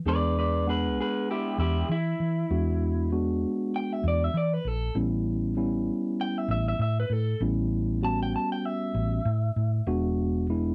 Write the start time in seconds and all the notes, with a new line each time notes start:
0.06 E2 G#3 B3 D4 G#4 B4 D5
0.39 B4 D5
0.67 G#3 B3 D4 G#4 B4 F#5
1.01 G#4 B4
1.31 E4 G4
1.58 E2 E4 G4
1.89 E3 E4
2.20 E3
2.50 E2 G#3 B3 D4 F#4
3.12 G#3 B3 D4 F#4
3.76 G5
3.93 E5
4.04 E2
4.08 D5
4.24 E5
4.34 E3 D5
4.54 B4
4.65 A#1 A4
4.95 A1 G3 B3 C#4 E4
5.57 G3 B3 C#4 E4
6.21 G5
6.38 E5
6.48 A1 E5
6.68 E5
6.79 A2 E5
7.00 B4
7.10 A2 A4
7.40 A1 G3 B3 C#4 E4
8.03 G3 B3 C#4 F#4 A5
8.23 G5
8.36 A5
8.52 G5
8.65 E5
8.94 A1
9.25 A2
9.56 A2
9.87 E1 G#3 B3 D4 F#4
10.50 G#3 B3 D4 E4